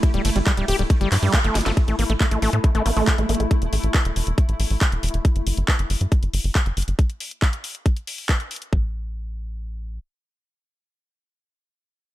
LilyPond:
<<
  \new Staff \with { instrumentName = "Synth texture" } { \time 4/4 \tempo 4 = 138 <a e'>1 | <a e'>1~ | <a e'>1 | r1 |
r1 | r1 | r1 | }
  \new Staff \with { instrumentName = "Acid bass" } { \time 4/4 r16 g16 a16 g16 g16 g16 g'16 g16 r16 g16 fis16 g16 b16 a16 g16 a16 | r16 a16 bes16 a16 a16 a16 a16 a16 r16 a16 bes16 a16 bes16 a16 bes16 a16 | r1 | r1 |
r1 | r1 | r1 | }
  \new Staff \with { instrumentName = "Analog synth bass" } { \clef bass \time 4/4 r16 d,,16 g,,16 g,,16 r16 d,,16 d,,16 d,,16 r16 g,,16 g,16 g,16 r16 g,,16 g,,16 g,,16 | r16 a,,16 a,,16 a,,16 r16 a,,16 a,,16 a,16 r16 a,,16 a,,16 a,,16 r16 a,,16 a,,16 a,,16 | r16 e,,16 a,,16 a,,16 r16 e,,16 e,,16 e,,16 r16 a,,16 a,,16 a,,16 r16 e,,16 e,,16 e,,16 | r16 g,,16 g,,16 g,,16 r16 g,,16 g,,16 g,16 r16 g,,16 g,,16 g,,16 r16 g,,16 g,,16 g,,16 |
r1 | a,,2. r4 | r1 | }
  \new DrumStaff \with { instrumentName = "Drums" } \drummode { \time 4/4 <hh bd>16 hh16 <hho cymr>16 hh16 <hc hh bd>16 hh16 <hho cymr>16 hh16 <hh bd>16 hh16 <hc hho cymr>16 hho16 <hc hh bd>16 hh16 <hho cymr sn>32 hh32 <hh sn>16 | <hh bd>16 hh16 hho16 hh16 <hc hh bd>16 hh16 hho16 hh16 <hh bd>16 hh16 hho16 hho16 <hc hh bd>16 hh16 hho32 hh32 hh16 | <hh bd>16 hh16 hho16 hh16 <hc hh bd>16 hh16 hho16 hh16 <hh bd>16 hh16 hho16 hho16 <hc hh bd>16 hh16 hho32 hh32 hh16 | <hh bd>16 hh16 hho16 hh16 <hc hh bd>16 hh16 hho16 hh16 <hh bd>16 hh16 hho16 hho16 <hc hh bd>16 hh16 hho32 hh32 hh16 |
<hh bd>16 hh16 hho16 hh16 <hc hh bd>16 hh16 hho16 hh16 <hh bd>16 hh16 hho16 hho16 <hc hh bd>16 hh16 hho32 hh32 hh16 | bd4 r4 r4 r4 | r4 r4 r4 r4 | }
>>